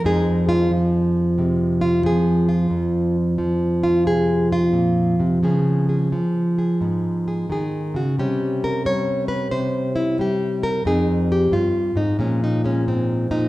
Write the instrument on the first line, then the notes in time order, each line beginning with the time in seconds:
nylon-string guitar
0.04 F2 F3 G#3 D#4 G#4
0.49 F4
0.71 F3
1.38 C3 G#3
1.81 F4
2.04 F3 G#4
2.49 F4
2.70 F2
3.38 F3
3.83 F4
4.06 C3 G#4
4.52 F4
4.73 A#2
5.20 C3
5.43 C#3 F3 B3 G#4
5.89 G#4
6.12 F3
6.58 G#4
6.81 G#2 B3
7.28 G#4
7.50 D#3 G#4
7.94 C#3 F#4
8.19 C3 G3 C#4 G4
8.64 A#4
8.85 G3 C#5
9.28 B4
9.51 C3 C5
9.96 E4
10.19 G3 G4
10.63 A#4
10.85 F2 C4 D#4 G#4
11.32 G4
11.51 G2 F4
11.96 G#2 D#4
12.19 A#2 F3 G#3 C#4
12.44 D#4
12.64 G#3 C#4
12.87 G#2 C4
13.31 A#2 D#4